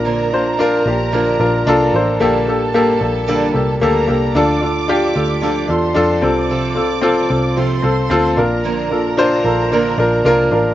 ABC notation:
X:1
M:4/4
L:1/8
Q:1/4=112
K:Bblyd
V:1 name="Violin section"
[Bb]8 | [Aa]6 [Bb]2 | [dd']4- [dd'] [cc']2 [dd']- | [dd']4 [cc']3 [Bb]- |
[Bb]8 |]
V:2 name="Grand piano"
[DFB] [DFc] [DFB] [DFG] [DFB] [DFB] [DFA] [DFc] | [B,GA] [B,GA] [B,GA] [B,GA] [B,GA] [B,GA] [B,GA] [B,GA] | [DFA] [DFA] [DFG] [DFA] [DFA] [DFA] [DFA] [CFA]- | [CFA] [CFA] [CFA] [CFA] [CFA] [CFA] [CFA] [DFB]- |
[DFB] [DFA] [DFc] [DFA] [DFB] [DFB] [DFB] [DFB] |]
V:3 name="Grand piano" clef=bass
B,,2 z6 | B,,3 z4 z | D,3 z4 C,- | C,2 z4 z B,,- |
B,,2 z6 |]
V:4 name="Steel-string acoustic guitar"
[B,,D,F,B,DB] [F,B,DB] [F,B,DB] [F,B,DB] [B,,D,F,B,DB] [F,B,DB] [F,B,DB] [F,B,DB] | [B,,D,G,B,DA] [G,B,DA] [G,B,DA] [G,B,DA] [B,,D,G,B,DA] [G,B,DA] [G,B,DA] [G,B,DA] | [D,F,DFA] [DFA] [F,DFA] [DFA] [D,F,DFA] [DFA] [F,DFA] [CFA] | [C,F,CFA] [CFA] [F,CFA] [CFA] [C,F,CFA] [CFA] [F,CFA] [F,B,DB] |
[B,,D,F,B,DB] [F,B,DB] [F,B,DB] [F,B,DB] [B,,D,F,B,DB] [F,B,DB] [F,B,DB] [F,B,DB] |]
V:5 name="Picked electric bass" clef=bass
B,,,3 B,,,2 B,,, C,, A,,, | B,,,3 B,,,2 C,, D,, C,, | D,,3 D,,2 E,, F,, C,,- | C,,3 C,,2 C,, D,, B,,,- |
B,,,3 B,,,2 B,,, C,, A,,, |]